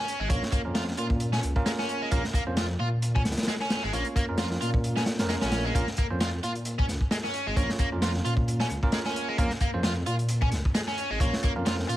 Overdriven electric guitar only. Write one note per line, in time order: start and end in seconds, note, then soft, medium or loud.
0.00 0.18 C#4 medium
0.20 0.29 G#3 medium
0.30 0.41 A#3 medium
0.52 0.60 A#3 loud
0.75 0.83 F4 medium
0.98 1.05 F4 medium
1.33 1.39 C#4 loud
1.66 1.71 G#3 loud
1.79 2.00 C#4 medium
2.02 2.11 G#3 medium
2.12 2.23 A#3 medium
2.35 2.42 A#3 loud
2.57 2.65 F4 medium
2.80 2.87 F4 loud
3.15 3.21 C#4 loud
3.48 3.53 G#3 medium
3.61 3.82 C#4 medium
3.83 3.92 G#3 medium
3.94 4.05 A#3 medium
4.16 4.24 A#3 loud
4.39 4.46 F4 medium
4.61 4.69 F4 loud
4.97 5.03 C#4 loud
5.30 5.34 G#3 loud
5.42 5.64 C#4 medium
5.65 5.74 G#3 medium
5.75 5.87 A#3 medium
5.98 6.06 A#3 loud
6.21 6.28 F4 medium
6.43 6.51 F4 medium
6.79 6.85 C#4 loud
7.11 7.16 G#3 loud
7.24 7.46 C#4 medium
7.47 7.56 G#3 medium
7.57 7.68 A#3 medium
7.79 7.87 A#3 loud
8.03 8.10 F4 medium
8.25 8.33 F4 loud
8.60 8.66 C#4 loud
8.93 8.98 G#3 loud
9.06 9.27 C#4 medium
9.29 9.38 G#3 medium
9.39 9.50 A#3 medium
9.61 9.69 A#3 loud
9.84 9.92 F4 medium
10.07 10.14 F4 loud
10.42 10.48 C#4 loud
10.75 10.80 G#3 loud
10.88 11.09 C#4 medium
11.10 11.20 G#3 medium
11.21 11.32 A#3 medium
11.43 11.51 A#3 loud
11.66 11.74 F4 medium
11.88 11.96 F4 loud